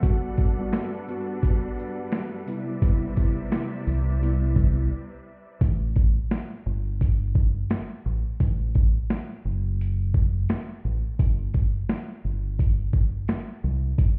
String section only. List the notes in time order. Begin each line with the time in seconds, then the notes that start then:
Already playing: A4 F#5
0.03 G3 D4 B4
2.46 C3 D5 E5